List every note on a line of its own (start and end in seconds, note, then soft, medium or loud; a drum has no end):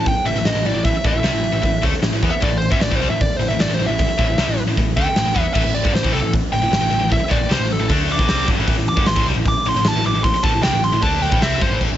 0.00 0.15 A1 medium
0.00 0.12 A2 medium
0.00 0.12 E3 medium
0.06 0.26 G5 medium
0.06 kick loud
0.06 open hi-hat medium
0.25 0.34 A1 medium
0.25 0.34 A2 medium
0.25 0.35 E3 medium
0.25 0.46 E5 medium
0.25 open hi-hat medium
0.35 0.44 A1 medium
0.35 0.45 A2 medium
0.35 0.45 E3 medium
0.35 snare soft
0.45 0.54 A1 medium
0.45 0.54 A2 medium
0.45 0.54 E3 medium
0.45 0.65 D#5 medium
0.45 snare loud
0.45 open hi-hat medium
0.55 0.64 A1 medium
0.55 0.65 A2 medium
0.55 0.65 E3 medium
0.65 0.74 A1 medium
0.65 0.73 A2 medium
0.65 0.74 E3 medium
0.65 0.84 D5 medium
0.65 open hi-hat medium
0.74 0.84 A1 medium
0.74 0.83 A2 medium
0.74 0.84 E3 medium
0.84 0.93 A1 medium
0.84 0.94 A2 medium
0.84 0.95 E3 medium
0.84 1.04 E5 medium
0.84 kick medium
0.84 open hi-hat medium
0.95 muted distorted electric guitar stroke medium
1.04 1.13 A1 medium
1.04 1.12 A2 medium
1.04 1.13 E3 medium
1.04 1.82 E5 medium
1.04 kick loud
1.04 open hi-hat medium
1.14 1.23 A1 medium
1.14 1.23 A2 medium
1.14 1.24 E3 medium
1.23 1.33 C2 medium
1.23 1.32 C3 medium
1.23 1.32 G3 loud
1.23 snare loud
1.23 open hi-hat medium
1.33 1.52 A1 medium
1.33 1.49 A2 medium
1.33 1.49 E3 medium
1.44 open hi-hat medium
1.52 1.62 A1 medium
1.52 1.61 A2 medium
1.52 1.61 E3 medium
1.62 1.82 A1 medium
1.62 1.78 A2 medium
1.62 1.79 E3 medium
1.62 kick medium
1.62 open hi-hat medium
1.82 1.92 D2 medium
1.82 1.92 D3 medium
1.82 1.92 A3 medium
1.82 kick loud
1.82 open hi-hat medium
1.92 muted distorted electric guitar stroke medium
1.92 muted picked electric bass stroke soft
1.92 snare soft
2.02 2.11 A1 medium
2.02 2.12 A2 medium
2.02 2.12 E3 medium
2.02 snare loud
2.02 open hi-hat medium
2.12 2.21 A1 medium
2.12 2.22 A2 medium
2.12 2.21 E3 medium
2.22 2.30 E2 medium
2.22 2.31 E3 medium
2.22 2.32 B3 medium
2.22 kick loud
2.22 open hi-hat medium
2.31 2.42 E5 loud
2.31 muted picked electric bass stroke soft
2.31 muted distorted electric guitar stroke medium
2.41 2.50 A1 medium
2.41 2.50 A2 medium
2.41 2.50 E3 medium
2.41 2.56 D5 medium
2.41 kick loud
2.41 open hi-hat medium
2.51 2.69 A1 medium
2.51 2.67 A2 medium
2.51 2.67 E3 medium
2.58 2.69 C5 medium
2.62 open hi-hat medium
2.71 2.80 G1 medium
2.71 2.80 G2 medium
2.71 2.81 D3 loud
2.71 2.82 E5 medium
2.71 kick loud
2.80 2.90 A1 medium
2.80 2.89 A2 medium
2.80 2.90 E3 medium
2.80 2.96 D5 medium
2.80 snare loud
2.80 open hi-hat medium
2.91 2.99 A1 loud
2.91 2.99 A2 medium
2.91 3.00 E3 medium
2.91 kick loud
2.96 3.08 C5 medium
3.00 3.09 C2 medium
3.00 3.09 C3 medium
3.00 3.10 G3 medium
3.00 open hi-hat soft
3.10 3.28 A1 medium
3.10 3.26 A2 medium
3.10 3.26 E3 medium
3.10 3.21 E5 medium
3.21 3.37 D5 medium
3.21 kick loud
3.21 open hi-hat medium
3.37 3.48 A1 medium
3.37 3.49 A2 medium
3.37 3.50 E3 medium
3.37 3.48 C5 medium
3.37 open hi-hat medium
3.48 3.58 A1 medium
3.48 3.58 A2 medium
3.48 3.59 E3 medium
3.48 3.60 E5 medium
3.59 3.68 A1 medium
3.59 3.68 A2 medium
3.59 3.69 E3 medium
3.59 3.74 D5 medium
3.59 snare loud
3.59 open hi-hat medium
3.69 3.78 A1 medium
3.69 3.78 A2 medium
3.69 3.78 E3 medium
3.74 3.86 C5 medium
3.79 3.88 A1 medium
3.79 3.87 A2 medium
3.79 3.87 E3 medium
3.79 open hi-hat soft
3.86 3.98 A1 medium
3.86 3.98 A2 medium
3.86 3.98 E3 medium
3.86 4.62 E5 medium
3.99 4.08 A1 medium
3.99 4.07 A2 medium
3.99 4.08 E3 medium
3.99 kick medium
3.99 open hi-hat medium
4.08 muted distorted electric guitar stroke medium
4.08 snare soft
4.18 4.27 A1 medium
4.18 4.27 A2 medium
4.18 4.27 E3 loud
4.18 kick loud
4.18 open hi-hat medium
4.28 4.37 A1 medium
4.28 4.37 A2 medium
4.28 4.38 E3 medium
4.37 4.46 C2 medium
4.37 4.47 C3 medium
4.37 4.48 G3 loud
4.37 snare loud
4.37 open hi-hat medium
4.47 4.66 A1 medium
4.47 4.63 A2 medium
4.47 4.63 E3 medium
4.58 open hi-hat medium
4.66 4.76 A1 medium
4.66 4.76 A2 medium
4.66 4.77 E3 medium
4.77 4.95 A1 medium
4.77 4.93 A2 medium
4.77 4.93 E3 medium
4.77 kick medium
4.77 open hi-hat medium
4.97 5.05 D2 medium
4.97 5.06 D3 medium
4.97 5.06 A3 medium
4.97 5.41 G5 loud
4.97 kick loud
4.97 open hi-hat medium
5.07 muted picked electric bass stroke soft
5.07 muted distorted electric guitar stroke medium
5.16 5.25 A1 medium
5.16 5.24 A2 medium
5.16 5.25 E3 medium
5.16 snare loud
5.16 open hi-hat medium
5.26 5.35 A1 medium
5.26 5.34 A2 medium
5.26 5.33 E3 medium
5.35 5.45 E2 medium
5.35 5.44 E3 medium
5.35 5.44 B3 medium
5.35 kick medium
5.35 open hi-hat medium
5.41 5.53 E5 loud
5.41 muted distorted electric guitar stroke medium
5.46 muted picked electric bass stroke soft
5.54 5.64 A1 medium
5.54 5.63 A2 medium
5.54 5.63 E3 medium
5.54 5.73 E5 medium
5.54 kick loud
5.54 crash loud
5.64 5.83 A1 medium
5.64 5.80 A2 medium
5.64 5.80 E3 medium
5.74 5.94 D5 medium
5.74 open hi-hat medium
5.83 5.93 G1 medium
5.83 5.93 G2 medium
5.83 5.93 D3 loud
5.83 kick loud
5.93 6.03 A1 medium
5.93 6.02 A2 medium
5.93 6.03 E3 medium
5.93 6.13 C5 medium
5.93 snare loud
5.93 open hi-hat medium
6.03 6.12 A1 medium
6.03 6.12 A2 medium
6.03 6.13 E3 medium
6.03 kick loud
6.13 6.22 C2 medium
6.13 6.22 C3 medium
6.13 6.22 G3 loud
6.13 6.32 A4 medium
6.13 open hi-hat medium
6.22 6.41 A1 medium
6.22 6.38 A2 medium
6.22 6.38 E3 medium
6.34 kick loud
6.34 open hi-hat medium
6.52 6.61 A1 medium
6.52 6.60 A2 medium
6.52 6.61 E3 medium
6.52 7.09 G5 medium
6.52 open hi-hat medium
6.62 6.71 A1 medium
6.62 6.69 A2 medium
6.62 6.70 E3 medium
6.71 6.80 A1 medium
6.71 6.79 A2 medium
6.71 6.80 E3 medium
6.71 snare loud
6.71 open hi-hat medium
6.81 6.90 A1 medium
6.81 6.89 A2 medium
6.81 6.89 E3 medium
6.90 6.99 A1 medium
6.90 6.98 A2 medium
6.90 6.99 E3 medium
6.90 open hi-hat soft
6.99 7.09 A1 medium
6.99 7.08 A2 medium
6.99 7.09 E3 medium
7.09 7.20 A1 medium
7.09 7.19 A2 medium
7.09 7.20 E3 medium
7.09 7.31 E5 medium
7.09 kick medium
7.09 open hi-hat medium
7.20 muted distorted electric guitar stroke medium
7.29 7.39 A1 medium
7.29 7.37 A2 medium
7.29 7.38 E3 medium
7.29 7.50 D5 medium
7.29 kick loud
7.29 open hi-hat medium
7.39 7.49 A1 medium
7.39 7.49 A2 medium
7.39 7.49 E3 medium
7.49 7.59 C2 loud
7.49 7.59 C3 medium
7.49 7.59 G3 loud
7.49 7.72 C5 medium
7.49 snare loud
7.49 open hi-hat medium
7.59 7.78 A1 medium
7.59 7.76 A2 medium
7.59 7.76 E3 medium
7.71 7.90 A4 loud
7.71 open hi-hat medium
7.79 7.88 A1 medium
7.79 7.89 A2 medium
7.79 7.90 E3 medium
7.89 8.17 D2 medium
7.89 8.18 D3 medium
7.89 8.18 A3 loud
7.89 8.19 D4 loud
7.89 kick loud
7.89 open hi-hat medium
8.10 8.48 D6 medium
8.10 open hi-hat medium
8.18 8.27 A1 loud
8.18 8.27 A2 loud
8.18 8.28 E3 medium
8.18 kick loud
8.18 snare soft
8.28 8.46 C2 medium
8.28 8.47 C3 medium
8.28 8.47 G3 loud
8.28 8.48 C4 medium
8.28 snare loud
8.28 open hi-hat medium
8.47 8.57 G1 loud
8.47 8.57 G2 medium
8.47 8.56 D3 loud
8.47 kick loud
8.47 open hi-hat medium
8.56 8.67 A1 medium
8.56 8.66 A2 medium
8.56 8.67 E3 medium
8.68 8.77 A1 medium
8.68 8.76 A2 medium
8.68 8.76 E3 loud
8.68 kick loud
8.68 open hi-hat medium
8.77 8.95 A1 medium
8.77 8.93 A2 medium
8.77 8.93 E3 medium
8.77 snare soft
8.87 9.07 D6 loud
8.87 open hi-hat medium
8.96 9.06 G1 medium
8.96 9.06 G2 loud
8.96 9.06 D3 medium
8.96 kick loud
9.06 9.16 A1 medium
9.06 9.14 A2 medium
9.06 9.15 E3 medium
9.06 9.26 C6 medium
9.06 snare loud
9.06 open hi-hat medium
9.16 9.26 A1 loud
9.16 9.25 A2 medium
9.16 9.25 E3 loud
9.16 kick loud
9.26 9.35 C2 loud
9.26 9.35 C3 medium
9.26 9.36 G3 loud
9.26 open hi-hat medium
9.36 9.54 A1 medium
9.36 9.52 A2 medium
9.36 9.52 E3 medium
9.46 9.68 D6 medium
9.46 kick loud
9.46 open hi-hat medium
9.65 9.74 A1 medium
9.65 9.75 A2 medium
9.65 9.75 E3 medium
9.65 9.88 C6 medium
9.65 open hi-hat medium
9.75 9.84 A1 medium
9.75 9.83 A2 medium
9.75 9.84 E3 medium
9.75 snare soft
9.85 9.94 A1 medium
9.85 9.94 A2 medium
9.85 9.95 E3 medium
9.85 10.05 A5 medium
9.85 snare loud
9.85 open hi-hat medium
9.95 10.04 A1 medium
9.95 10.04 A2 medium
9.95 10.05 E3 medium
10.04 10.14 A1 medium
10.04 10.13 A2 medium
10.04 10.14 E3 medium
10.04 10.24 D6 loud
10.04 open hi-hat medium
10.14 10.24 A1 medium
10.14 10.23 A2 medium
10.14 10.23 E3 medium
10.24 10.33 A1 medium
10.24 10.33 A2 medium
10.24 10.34 E3 medium
10.24 10.43 C6 medium
10.24 kick medium
10.24 open hi-hat medium
10.34 muted distorted electric guitar stroke medium
10.34 snare soft
10.43 10.52 A1 loud
10.43 10.52 A2 medium
10.43 10.53 E3 medium
10.43 10.62 A5 loud
10.43 kick loud
10.43 open hi-hat medium
10.54 10.62 A1 medium
10.54 10.62 A2 medium
10.54 10.63 E3 medium
10.63 10.72 C2 loud
10.63 10.72 C3 medium
10.63 10.72 G3 loud
10.63 10.82 G5 medium
10.63 snare loud
10.63 open hi-hat medium
10.73 10.91 A1 medium
10.73 10.88 A2 medium
10.73 10.89 E3 medium
10.84 11.02 C6 medium
10.84 open hi-hat medium
10.93 11.01 A1 medium
10.93 11.01 A2 medium
10.93 11.02 E3 medium
11.02 11.29 D2 loud
11.02 11.31 D3 medium
11.02 11.31 A3 loud
11.02 11.31 D4 loud
11.02 11.22 A5 medium
11.02 kick loud
11.02 open hi-hat medium
11.22 11.41 G5 loud
11.22 open hi-hat medium
11.32 11.41 A1 loud
11.32 11.41 A2 medium
11.32 11.41 E3 medium
11.32 kick loud
11.41 11.59 C2 loud
11.41 11.60 C3 medium
11.41 11.61 G3 medium
11.41 11.61 C4 medium
11.41 11.61 E5 medium
11.41 snare loud
11.41 open hi-hat medium
11.61 11.70 G1 medium
11.61 11.70 G2 loud
11.61 11.70 D3 loud
11.61 11.80 C5 loud
11.61 kick loud
11.61 open hi-hat medium
11.71 11.80 A1 medium
11.71 11.79 A2 medium
11.71 11.80 E3 medium
11.80 11.90 A1 medium
11.80 11.89 A2 medium
11.80 11.90 E3 medium
11.80 kick medium
11.80 crash medium
11.90 11.97 A1 medium
11.90 11.97 A2 medium
11.90 11.97 E3 medium